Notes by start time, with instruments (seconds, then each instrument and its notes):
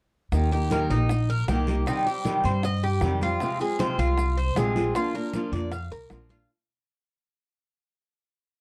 0.32 upright bass D#2, steel-string acoustic guitar D#3 A#3 D#4 G4, high bongo, high conga, long guiro, maracas
0.52 steel-string acoustic guitar A#3 D#4 G4, cuban tres G4, high conga, maracas
0.71 steel-string acoustic guitar D#3 A#3 D#4 G4, cuban tres A#4, high bongo, high conga, short guiro, maracas
0.90 upright bass A#1, cuban tres D#4, steel-string acoustic guitar D#4 G4, high conga, short guiro, maracas
0.94 steel-string acoustic guitar A#3
1.09 muted steel-string acoustic guitar stroke, high bongo, high conga, long guiro, maracas
1.30 cuban tres A#4, high conga, maracas
1.48 upright bass C2, steel-string acoustic guitar D#3 A#3 D#4 G4, cuban tres G4, high bongo, low bongo, high conga, short guiro, maracas
1.67 steel-string acoustic guitar A#3 D#4 G4, high conga, short guiro, maracas
1.86 steel-string acoustic guitar C3 D#3 G3 C4 G4, cuban tres D#4, high bongo, high conga, long guiro, maracas
2.06 steel-string acoustic guitar G3 C4 G4, cuban tres G4, high conga, maracas
2.25 steel-string acoustic guitar C3 D#3 G3 C4 G4, high bongo, high conga, short guiro, maracas
2.44 upright bass G2, steel-string acoustic guitar G3 C4 G4, cuban tres C5, high bongo, high conga, short guiro, maracas
2.63 cuban tres D#5, muted steel-string acoustic guitar stroke, high bongo, high conga, long guiro, maracas
2.83 cuban tres G4, high bongo, high conga, maracas
3.01 upright bass F2, steel-string acoustic guitar C3 D#3 G3 C4 G4, high bongo, low bongo, high conga, short guiro, maracas
3.21 steel-string acoustic guitar G3 C4 G4, cuban tres F4, high bongo, high conga, short guiro, maracas
3.40 steel-string acoustic guitar C3 F3 G#3 C4 F4, high bongo, high conga, long guiro, maracas
3.60 steel-string acoustic guitar G#3 C4 F4, cuban tres G#4, high conga, maracas
3.79 steel-string acoustic guitar C3 F3 G#3 C4 F4, cuban tres C5, high bongo, high conga, short guiro, maracas
3.98 upright bass C2, steel-string acoustic guitar G#3 C4 F4, cuban tres F4, high conga, short guiro, maracas
4.18 muted steel-string acoustic guitar stroke, high bongo, high conga, long guiro, maracas
4.37 cuban tres C5, high conga, maracas
4.55 upright bass A#1, steel-string acoustic guitar C3 F3 G#3 C4 F4, cuban tres G#4, high bongo, low bongo, high conga, short guiro, maracas
4.76 steel-string acoustic guitar G#3 C4 F4, high conga, short guiro, maracas
4.95 steel-string acoustic guitar F3 A#3 D4 F4, cuban tres F4, high bongo, long guiro, maracas
5.14 steel-string acoustic guitar A#3 D4 F4, cuban tres A#4, high conga, maracas
5.33 steel-string acoustic guitar F3 A#3 D4 F4, high bongo, high conga, short guiro, maracas
5.52 upright bass F2, steel-string acoustic guitar A#3 D4 F4, cuban tres D5, high bongo, short guiro, maracas
5.72 cuban tres F5, muted steel-string acoustic guitar stroke, high bongo, high conga, long guiro, maracas
5.91 upright bass C2, cuban tres A#4, high bongo, high conga, maracas
6.10 upright bass A#1, steel-string acoustic guitar F3 A#3 D4 F4, high bongo, low bongo, high conga, short guiro, maracas
6.29 steel-string acoustic guitar A#3 D4 F4, cuban tres F4, high conga, short guiro, maracas